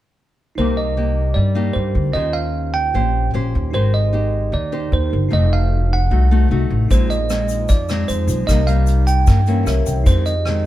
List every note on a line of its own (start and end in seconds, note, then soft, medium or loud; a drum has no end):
0.55 1.33 C2 medium
0.55 1.35 C3 soft
0.55 0.95 A#3 medium
0.55 2.12 D#4 soft
0.55 0.95 D#4 soft
0.55 2.13 G4 soft
0.55 0.78 C5 medium
0.59 0.95 G4 medium
0.59 2.14 A#4 soft
0.59 2.15 D6 medium
0.77 1.39 D#5 medium
0.97 1.37 A#3 soft
0.97 1.36 D#4 soft
0.97 1.37 G4 soft
1.34 1.73 G2 medium
1.34 2.13 G3 soft
1.34 1.76 D5 medium
1.55 2.12 A#3 medium
1.55 2.12 D#4 medium
1.55 2.12 G4 medium
1.74 1.94 G2 medium
1.74 2.16 C5 medium
1.95 2.14 D2 medium
2.12 2.90 D#2 medium
2.12 2.92 D#3 soft
2.12 3.69 C#4 soft
2.12 2.91 C#4 soft
2.12 3.70 F4 soft
2.12 2.91 G4 medium
2.12 3.71 G4 soft
2.12 2.92 C5 medium
2.12 2.35 D#5 loud
2.18 3.72 C5 medium
2.33 2.75 F5 medium
2.74 3.30 G5 medium
2.94 3.32 A#1 medium
2.94 3.72 A#2 soft
2.94 3.31 C#4 soft
2.94 3.31 G4 medium
2.94 3.31 C5 medium
3.34 3.53 A#1 medium
3.34 3.72 C#4 medium
3.34 3.72 G4 medium
3.34 3.73 C5 medium
3.55 3.73 D#2 medium
3.71 4.49 G#1 medium
3.71 4.51 G#3 soft
3.71 5.08 D#4 soft
3.71 3.99 D#4 medium
3.71 5.09 G4 soft
3.71 3.99 G4 soft
3.71 3.95 C5 medium
3.75 5.10 A#4 soft
3.75 4.00 C5 medium
3.75 5.11 C5 medium
3.94 4.55 D#5 medium
4.13 4.52 D#4 soft
4.13 4.53 G4 soft
4.13 4.53 C5 medium
4.52 4.90 D#2 medium
4.52 5.30 D#3 medium
4.52 4.94 D5 medium
4.72 5.29 D#4 medium
4.72 5.29 G4 soft
4.72 5.29 C5 medium
4.92 5.11 D#2 medium
4.92 5.34 C5 medium
5.10 5.31 G1 medium
5.10 5.27 D#4 soft
5.10 5.32 G4 soft
5.10 5.32 A#4 soft
5.10 5.32 C5 soft
5.29 6.08 F3 medium
5.29 5.85 A3 medium
5.29 6.85 D#4 soft
5.29 5.85 D#4 soft
5.29 6.86 F#4 soft
5.29 5.85 F#4 medium
5.29 6.87 A4 soft
5.33 6.08 F1 medium
5.33 6.88 C5 medium
5.33 5.53 D#5 medium
5.53 5.93 F5 loud
5.93 6.47 F#5 medium
6.11 6.48 C2 medium
6.11 6.88 C3 soft
6.11 6.28 A3 soft
6.11 6.28 D#4 medium
6.11 6.28 F#4 soft
6.31 6.48 A3 medium
6.31 6.48 D#4 medium
6.31 6.48 F#4 medium
6.51 6.69 C2 medium
6.51 6.89 A3 medium
6.51 6.89 D#4 medium
6.51 6.89 F#4 medium
6.70 6.89 A1 medium
6.88 7.65 A#1 medium
6.88 7.67 A#2 soft
6.88 7.16 G#3 medium
6.88 7.16 C4 medium
6.88 8.24 D#4 soft
6.88 8.25 F4 soft
6.88 8.26 G#4 soft
6.88 7.11 C5 medium
6.88 kick medium
6.88 closed hi-hat medium
6.88 shaker medium
6.92 7.16 D#4 medium
6.92 8.27 C5 medium
7.10 7.71 D#5 medium
7.10 closed hi-hat soft
7.10 shaker soft
7.29 7.69 G#3 soft
7.29 7.69 C4 soft
7.29 7.69 D#4 medium
7.29 cross-stick medium
7.29 closed hi-hat soft
7.29 shaker medium
7.49 closed hi-hat soft
7.49 shaker medium
7.69 8.06 F2 medium
7.69 8.46 F3 soft
7.69 8.10 D5 medium
7.69 kick medium
7.69 closed hi-hat medium
7.69 shaker medium
7.89 8.46 G#3 medium
7.89 8.46 C4 medium
7.89 8.46 D#4 medium
7.89 cross-stick medium
7.89 closed hi-hat soft
7.89 shaker soft
8.08 8.27 F2 medium
8.08 8.45 C5 medium
8.08 closed hi-hat soft
8.08 shaker medium
8.27 8.46 B1 medium
8.27 8.45 D#4 soft
8.27 8.48 F4 soft
8.27 8.48 G#4 soft
8.27 8.49 C5 soft
8.27 closed hi-hat soft
8.27 shaker medium
8.46 9.23 C2 medium
8.46 9.26 C3 medium
8.46 8.60 G3 soft
8.46 9.63 D#4 soft
8.46 9.64 G4 soft
8.46 8.68 D#5 medium
8.46 kick medium
8.46 cross-stick medium
8.46 closed hi-hat medium
8.46 shaker medium
8.50 8.61 A#3 medium
8.50 8.61 D#4 medium
8.50 9.65 A#4 soft
8.50 9.66 D5 soft
8.67 9.24 G3 medium
8.67 9.24 A#3 medium
8.67 9.25 D#4 medium
8.67 9.04 F5 loud
8.67 closed hi-hat soft
8.67 shaker soft
8.87 closed hi-hat soft
8.87 shaker medium
9.07 9.62 G5 medium
9.07 closed hi-hat soft
9.07 shaker medium
9.27 9.64 G2 medium
9.27 9.65 G2 soft
9.27 9.39 G3 soft
9.27 9.39 A#3 medium
9.27 9.39 D#4 medium
9.27 kick medium
9.27 cross-stick medium
9.27 closed hi-hat medium
9.27 shaker medium
9.46 10.05 E3 medium
9.46 10.05 A#3 medium
9.46 10.05 C#4 medium
9.46 closed hi-hat soft
9.46 shaker soft
9.65 9.85 C2 medium
9.65 10.05 E4 medium
9.65 10.05 G4 soft
9.65 10.06 A#4 soft
9.65 10.07 C#5 medium
9.65 9.85 E5 medium
9.65 cross-stick medium
9.65 closed hi-hat soft
9.65 shaker medium
9.86 10.04 C2 medium
9.86 10.05 G5 medium
9.86 closed hi-hat soft
9.86 shaker medium
10.04 10.66 F2 medium
10.04 10.66 D#4 soft
10.04 10.66 G4 soft
10.04 10.25 C5 medium
10.04 kick medium
10.04 closed hi-hat soft
10.04 shaker medium
10.08 10.32 D#3 medium
10.08 10.32 G#3 soft
10.08 10.32 C4 medium
10.08 10.66 G#4 soft
10.08 10.66 C5 medium
10.26 10.66 D#5 medium
10.26 closed hi-hat soft
10.26 shaker soft
10.45 10.66 D#3 soft
10.45 10.66 G#3 medium
10.45 10.66 C4 medium
10.45 cross-stick medium
10.45 closed hi-hat soft